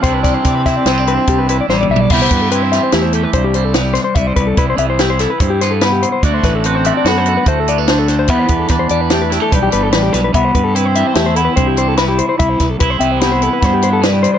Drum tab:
CC |------------------------------|x-----------------------------|------------------------------|------------------------------|
HH |x--x--x--x--x--x--x--x--------|---x--x--x--x--x--x--x--x--x--|x--x--x--x--x--x--x--x--x--x--|x--x--x--x--x--x--x--x--x--x--|
SD |---o--o--o--o-----------o-----|---------o--o-----------o--o--|------------o--o-----o--o-----|---o--------o-----------o--o--|
T2 |--------------------------o---|------------------------------|------------------------------|------------------------------|
FT |----------------------------o-|------------------------------|------------------------------|------------------------------|
BD |o--o--o--o--------o-----------|o--o--------------o-----------|o--o--o-----------o-----------|o--o--------------o-----------|

CC |------------------------------|------------------------------|------------------------------|
HH |x--x--x--x--x--x--x--x--x--x--|x--x--x--x--x--x--x--x--x--x--|x--x--x--x--x--x--x--x--x--x--|
SD |------o-----o--o--------o--o--|------------o-----------o-----|---o--------o-----o-----o-----|
T2 |------------------------------|------------------------------|------------------------------|
FT |------------------------------|------------------------------|------------------------------|
BD |o--o--o-----------o-----------|o--o--------------o-----------|o--o--o-----------o-----------|